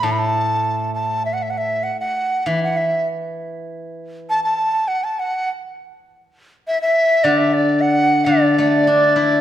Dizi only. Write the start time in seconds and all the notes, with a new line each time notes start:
0.04 A5
0.11 B5
0.19 A5
0.94 A5
1.25 E5
1.33 F#5
1.42 E5
1.50 F#5
1.58 E5
1.83 F#5
2.00 F#5
2.47 E5
2.63 F#5
2.77 E5
4.30 A5
4.44 A5
4.88 F#5
5.04 A5
5.19 F#5
6.67 E5
6.81 E5
7.24 D5
7.38 E5
7.53 D5
7.81 F#5
8.25 D5